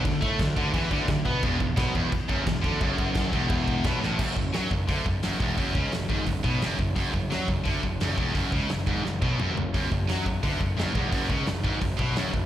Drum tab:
CC |xxxxxxxx|xxxxxxxx|xxxxxxx-|x-------|
HH |--------|--------|--------|--o-o-o-|
SD |--o---o-|--o---o-|--o---oo|--o---o-|
T2 |--------|--------|--------|--------|
FT |--------|--------|--------|--------|
BD |oooooooo|oooooooo|ooooooo-|oo-ooo-o|

CC |--------|--------|--------|--------|
HH |o-o-o-o-|o-o-o-o-|o-o-----|o-o-o-o-|
SD |--o---o-|--o---o-|--o-o---|--o---o-|
T2 |--------|--------|------o-|--------|
FT |--------|--------|-------o|--------|
BD |oo-ooo-o|oo-ooo-o|oo-o-o--|oo-ooo-o|

CC |--------|
HH |o-o-o-o-|
SD |--o---o-|
T2 |--------|
FT |--------|
BD |oo-ooo-o|